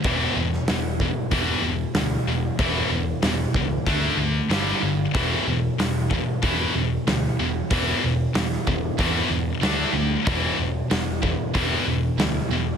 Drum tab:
HH |o---o---o---o---|o---o---o---o---|o---o---o---o---|o---o---o---o---|
SD |---oo-------o---|----o-------o---|----o-------o---|----oo------o---|
BD |o-----o-o-------|o-----o-o-------|o-----o-o-------|o-----o-o-------|

HH |o---o---o---o---|
SD |----o-------o---|
BD |o-----o-o-------|